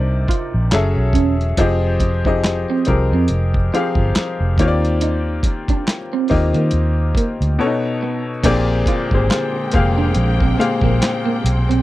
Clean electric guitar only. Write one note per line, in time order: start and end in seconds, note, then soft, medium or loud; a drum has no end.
0.29 0.49 F4 medium
1.14 1.34 C#4 medium
1.59 1.78 F4 medium
2.01 muted clean electric guitar stroke soft
2.26 2.40 D#4 medium
2.70 2.83 C4 medium
2.88 muted clean electric guitar stroke soft
3.13 3.27 C4 medium
3.74 3.93 F4 medium
4.59 4.78 D#4 medium
5.02 5.21 D#4 medium
5.46 muted clean electric guitar stroke soft
5.70 5.83 D4 medium
6.13 6.27 C4 medium
6.31 muted clean electric guitar stroke soft
6.55 6.69 A#3 medium
7.17 7.36 A#3 medium
8.03 8.22 B3 medium
8.44 8.63 D4 medium
8.88 9.07 F4 medium
9.31 9.50 F4 medium
9.73 muted clean electric guitar stroke soft
9.98 10.12 D4 medium
10.42 10.55 C4 medium
10.59 muted clean electric guitar stroke soft
10.84 10.98 A#3 medium
11.26 11.40 A#3 medium
11.44 muted clean electric guitar stroke soft
11.69 11.82 C4 medium